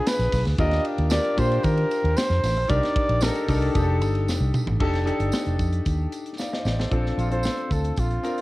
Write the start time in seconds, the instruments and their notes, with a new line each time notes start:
Already playing: grand piano D4 F4 G#4 B4
0.06 flugelhorn B4, snare, ride, tambourine
0.19 fingered electric bass A#1, snare, ride
0.32 fingered electric bass B1, kick, snare, open hi-hat, ride, tambourine
0.45 fingered electric bass D2, snare, ride
0.58 fingered electric bass D#2, grand piano D4 F4 G4 A#4, flugelhorn D#5, kick, hi-hat pedal, ride, tambourine
0.71 snare, ride
0.85 ride
0.98 fingered electric bass D#2, ride
1.10 grand piano D4 F4 G4 A#4, flugelhorn D5, snare, ride, tambourine
1.25 ride
1.37 fingered electric bass A#2, grand piano D4 F4 G4 C5, flugelhorn C5, kick, ride, tambourine
1.51 ride
1.63 fingered electric bass D#3, flugelhorn A#4, kick, ride, tambourine
1.77 ride
1.91 ride, tambourine
2.04 fingered electric bass D#2, ride
2.17 flugelhorn C5, snare, ride, tambourine
2.30 fingered electric bass F2, snare, ride
2.43 fingered electric bass A1, snare, open hi-hat, ride, tambourine
2.57 fingered electric bass A#1, ride
2.68 fingered electric bass C2, grand piano D4 D#4 G4 A#4, flugelhorn D5, kick, hi-hat pedal, ride, tambourine
2.83 snare, ride
2.96 kick, ride
3.09 fingered electric bass A#1, ride
3.21 grand piano D4 D#4 G4 A4, flugelhorn A#4, snare, ride, tambourine
3.35 ride
3.48 fingered electric bass C2, grand piano D4 D#4 G4 A#4, flugelhorn A4, kick, open hi-hat, ride, tambourine
3.62 ride
3.75 fingered electric bass F1, grand piano D4 D#4 G4 G#4, kick, hi-hat pedal, ride, tambourine
3.82 grand piano A4
4.01 fingered electric bass G1, ride, tambourine
4.15 ride
4.27 fingered electric bass F1, snare, tambourine
4.40 fingered electric bass C2
4.54 mid tom, tambourine
4.67 fingered electric bass A1, floor tom
4.80 grand piano D4 D#4 G4 A4, kick, crash
4.94 snare, closed hi-hat
5.06 grand piano D4 D#4 G4 A4, closed hi-hat
5.20 fingered electric bass G1, closed hi-hat
5.32 snare, tambourine
5.46 fingered electric bass F1, closed hi-hat
5.59 fingered electric bass F2, kick, closed hi-hat, tambourine
5.73 closed hi-hat
5.85 fingered electric bass D#2, kick, closed hi-hat, tambourine
6.12 closed hi-hat, tambourine
6.26 closed hi-hat
6.38 grand piano D5 F5, snare, tambourine
6.52 grand piano C5 D#5, snare
6.65 fingered electric bass A1, grand piano D5, snare, tambourine
6.79 grand piano A4 C5, snare
6.91 fingered electric bass A#1, grand piano C4 D4 F4 A4, kick, closed hi-hat
7.06 snare
7.18 fingered electric bass A#1, flugelhorn F4, closed hi-hat, tambourine
7.31 grand piano C4 D4 F4 A4, flugelhorn C5, closed hi-hat
7.43 snare, tambourine
7.58 closed hi-hat
7.71 fingered electric bass D2, flugelhorn A4, kick, closed hi-hat, tambourine
7.85 closed hi-hat
7.96 fingered electric bass A#1, flugelhorn F4, kick, closed hi-hat, tambourine
8.11 closed hi-hat
8.23 grand piano C4 D4 F4 A#4, closed hi-hat, tambourine
8.38 closed hi-hat